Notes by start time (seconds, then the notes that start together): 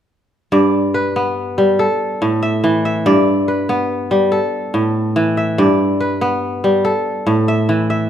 0.52 G2 D5
0.94 B4
1.16 B3
1.58 G3
1.79 A4
2.22 A2
2.43 E5
2.64 E3
2.85 E5
3.06 G2 D5
3.48 B4
3.69 B3
4.11 G3
4.32 A4
4.74 A2
5.16 E3
5.37 E5
5.58 G2 D5
6.00 B4
6.21 B3
6.64 G3
6.85 A4
7.27 A2
7.48 E5
7.69 E3
7.90 E5